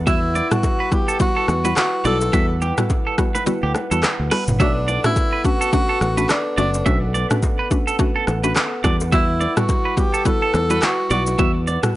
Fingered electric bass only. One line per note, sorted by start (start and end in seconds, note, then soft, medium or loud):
0.00 0.40 E2 medium
1.48 1.72 E2 medium
2.05 2.29 B1 medium
2.33 2.71 E2 loud
3.63 3.73 D2 medium
3.91 4.01 E2 medium
4.20 4.30 D2 medium
4.48 4.60 F#1 medium
4.60 4.97 B1 loud
6.01 6.25 A1 medium
6.58 6.82 F#1 medium
6.86 7.24 B1 loud
8.28 8.52 A1 medium
8.84 9.46 E2 loud
10.54 10.78 E2 medium
11.11 11.34 B1 loud
11.39 11.77 E2 loud